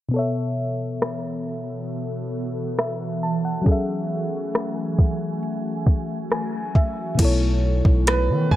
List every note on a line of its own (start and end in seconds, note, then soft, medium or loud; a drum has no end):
0.09 3.60 B2 medium
0.09 3.61 B3 medium
0.13 7.15 E3 medium
0.13 3.62 B3 medium
0.13 7.15 F#4 medium
0.13 3.63 A4 medium
0.13 3.62 A4 medium
0.13 3.64 C#5 medium
0.19 2.77 E5 medium
1.02 cross-stick loud
2.79 3.20 E5 medium
2.79 cross-stick loud
3.23 3.43 A5 medium
3.45 3.86 F#5 medium
3.62 7.13 F#3 medium
3.62 7.14 C#4 medium
3.66 7.16 A3 medium
3.66 7.15 G#4 medium
3.66 7.17 A4 medium
3.66 7.16 G#5 medium
3.66 kick loud
3.66 closed hi-hat medium
3.72 6.74 E5 medium
4.54 cross-stick loud
4.54 closed hi-hat medium
4.99 kick medium
5.43 closed hi-hat medium
5.87 kick medium
5.87 closed hi-hat medium
6.30 6.72 G#5 medium
6.30 cross-stick loud
6.30 closed hi-hat medium
6.75 7.16 E5 medium
6.75 kick medium
6.75 closed hi-hat medium
7.15 8.56 B2 medium
7.15 8.56 B3 medium
7.15 closed hi-hat medium
7.15 crash medium
7.19 7.83 B1 loud
7.19 8.56 E3 medium
7.19 8.56 A3 medium
7.19 8.56 B3 medium
7.19 8.56 E4 medium
7.19 8.56 F#4 medium
7.19 8.56 A4 medium
7.19 kick loud
7.25 8.56 C#5 medium
7.85 8.31 B1 loud
7.85 kick medium
8.07 8.53 B4 medium
8.07 cross-stick loud
8.07 closed hi-hat medium
8.29 8.50 D#3 medium
8.51 8.56 B1 loud
8.51 8.56 G#5 medium
8.51 kick medium